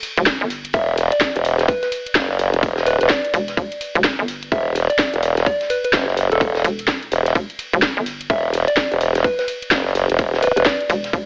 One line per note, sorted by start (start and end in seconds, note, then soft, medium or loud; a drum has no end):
0.03 closed hi-hat medium
0.03 open hi-hat loud
0.03 ride medium
0.17 0.39 E1 loud
0.17 closed hi-hat medium
0.26 kick loud
0.26 snare loud
0.26 closed hi-hat medium
0.26 ride medium
0.41 0.72 G1 loud
0.50 snare soft
0.50 closed hi-hat medium
0.50 open hi-hat medium
0.50 ride medium
0.65 closed hi-hat medium
0.73 1.10 E1 loud
0.73 0.89 E5 medium
0.73 kick loud
0.73 closed hi-hat medium
0.73 ride medium
0.97 closed hi-hat medium
0.97 open hi-hat loud
0.97 ride medium
1.12 1.18 D5 medium
1.12 closed hi-hat medium
1.21 1.30 D5 medium
1.21 kick loud
1.21 snare loud
1.21 closed hi-hat medium
1.21 ride medium
1.36 1.67 E1 loud
1.36 closed hi-hat medium
1.36 closed hi-hat soft
1.45 closed hi-hat medium
1.45 open hi-hat medium
1.45 ride medium
1.59 snare medium
1.59 closed hi-hat medium
1.68 1.78 B4 medium
1.68 kick loud
1.68 closed hi-hat medium
1.68 ride medium
1.82 1.89 B4 medium
1.82 snare soft
1.82 closed hi-hat medium
1.92 closed hi-hat medium
1.92 open hi-hat loud
1.92 ride medium
2.06 closed hi-hat medium
2.15 2.51 F#1 loud
2.15 kick loud
2.15 snare loud
2.15 closed hi-hat medium
2.15 ride medium
2.30 snare soft
2.39 closed hi-hat medium
2.39 open hi-hat loud
2.39 ride medium
2.54 2.99 E1 loud
2.54 closed hi-hat medium
2.63 kick loud
2.63 closed hi-hat loud
2.63 ride medium
2.77 snare medium
2.86 2.96 B4 medium
2.86 closed hi-hat medium
2.86 open hi-hat loud
2.86 ride medium
3.00 3.09 E1 loud
3.00 3.07 B4 medium
3.00 closed hi-hat soft
3.00 closed hi-hat medium
3.10 3.77 D5 loud
3.10 kick loud
3.10 snare loud
3.10 closed hi-hat medium
3.10 ride medium
3.25 closed hi-hat medium
3.33 3.56 E1 loud
3.33 closed hi-hat medium
3.33 open hi-hat loud
3.33 ride medium
3.48 snare soft
3.48 closed hi-hat medium
3.57 3.69 E1 loud
3.57 kick loud
3.57 closed hi-hat medium
3.57 ride medium
3.72 closed hi-hat soft
3.72 closed hi-hat medium
3.81 closed hi-hat medium
3.81 open hi-hat loud
3.81 ride medium
3.95 4.17 E1 loud
3.95 closed hi-hat medium
4.04 kick loud
4.04 snare loud
4.04 closed hi-hat medium
4.04 ride medium
4.19 4.50 G1 loud
4.28 snare soft
4.28 closed hi-hat medium
4.28 open hi-hat loud
4.28 ride medium
4.43 closed hi-hat medium
4.52 4.88 E1 loud
4.52 4.67 E5 medium
4.52 kick loud
4.52 closed hi-hat medium
4.52 ride medium
4.75 closed hi-hat medium
4.75 open hi-hat loud
4.75 ride medium
4.90 4.96 D5 medium
4.90 closed hi-hat medium
4.99 5.08 D5 medium
4.99 kick loud
4.99 snare loud
4.99 closed hi-hat medium
4.99 ride medium
5.13 5.45 E1 loud
5.13 closed hi-hat soft
5.13 closed hi-hat medium
5.23 closed hi-hat medium
5.23 open hi-hat loud
5.23 ride medium
5.37 snare soft
5.37 closed hi-hat medium
5.46 5.61 D5 medium
5.46 kick loud
5.46 closed hi-hat loud
5.46 ride medium
5.61 snare soft
5.61 closed hi-hat medium
5.70 5.79 B4 medium
5.70 closed hi-hat medium
5.70 open hi-hat loud
5.70 ride medium
5.84 5.90 B4 medium
5.84 closed hi-hat medium
5.93 6.29 F#1 loud
5.93 kick loud
5.93 snare loud
5.93 closed hi-hat medium
5.93 ride medium
6.08 snare soft
6.17 closed hi-hat medium
6.17 open hi-hat loud
6.17 ride medium
6.32 6.63 E1 loud
6.32 6.38 A4 medium
6.32 closed hi-hat medium
6.41 6.50 A4 medium
6.41 kick loud
6.41 closed hi-hat medium
6.41 ride medium
6.55 snare medium
6.55 closed hi-hat soft
6.64 7.10 E1 loud
6.64 closed hi-hat medium
6.64 open hi-hat loud
6.64 ride medium
6.79 closed hi-hat medium
6.79 closed hi-hat soft
6.88 kick loud
6.88 snare loud
6.88 closed hi-hat medium
6.88 ride medium
7.03 closed hi-hat medium
7.11 7.34 E1 loud
7.11 closed hi-hat medium
7.11 open hi-hat loud
7.11 ride medium
7.26 snare soft
7.26 closed hi-hat medium
7.35 7.47 E1 loud
7.35 kick loud
7.35 closed hi-hat medium
7.35 ride medium
7.50 closed hi-hat medium
7.50 closed hi-hat soft
7.59 closed hi-hat medium
7.59 open hi-hat loud
7.59 ride medium
7.73 7.95 E1 loud
7.73 closed hi-hat medium
7.82 kick loud
7.82 snare loud
7.82 closed hi-hat loud
7.82 ride medium
7.97 8.28 G1 loud
8.06 snare soft
8.06 closed hi-hat medium
8.06 open hi-hat medium
8.06 ride medium
8.21 closed hi-hat medium
8.30 8.66 E1 loud
8.30 8.45 E5 medium
8.30 kick loud
8.30 closed hi-hat medium
8.30 ride medium
8.53 closed hi-hat medium
8.53 open hi-hat loud
8.53 ride medium
8.68 8.74 D5 medium
8.68 closed hi-hat medium
8.77 kick loud
8.77 snare loud
8.77 closed hi-hat loud
8.77 ride medium
8.91 9.23 E1 loud
8.91 closed hi-hat medium
8.91 closed hi-hat soft
9.01 closed hi-hat medium
9.01 open hi-hat medium
9.01 ride medium
9.15 snare medium
9.15 closed hi-hat medium
9.24 9.34 B4 medium
9.24 kick loud
9.24 closed hi-hat medium
9.24 ride medium
9.39 9.45 B4 medium
9.39 snare soft
9.39 closed hi-hat medium
9.48 closed hi-hat medium
9.48 open hi-hat loud
9.48 ride medium
9.62 closed hi-hat medium
9.71 10.07 F#1 loud
9.71 kick loud
9.71 snare loud
9.71 closed hi-hat medium
9.71 ride medium
9.86 snare soft
9.95 closed hi-hat medium
9.95 open hi-hat medium
9.95 ride medium
10.10 10.55 E1 loud
10.10 closed hi-hat medium
10.19 kick loud
10.19 closed hi-hat medium
10.19 ride medium
10.34 snare medium
10.42 10.52 B4 medium
10.42 closed hi-hat medium
10.42 open hi-hat loud
10.42 ride medium
10.57 10.65 E1 loud
10.57 10.63 B4 medium
10.57 closed hi-hat medium
10.57 closed hi-hat soft
10.66 11.26 D5 medium
10.66 kick loud
10.66 snare loud
10.66 closed hi-hat loud
10.66 ride medium
10.80 closed hi-hat medium
10.90 11.12 E1 loud
10.90 closed hi-hat medium
10.90 open hi-hat medium
10.90 ride medium
11.04 snare soft
11.04 closed hi-hat medium
11.13 11.25 E1 loud
11.13 kick loud
11.13 closed hi-hat medium
11.13 ride medium